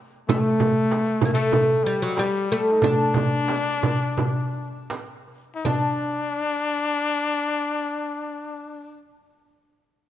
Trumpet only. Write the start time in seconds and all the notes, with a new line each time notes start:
0.28 A3
0.35 G3
0.40 A3
1.33 A3
1.84 G3
2.15 G3
2.71 D#4
2.81 D4
5.55 D#4
5.66 D4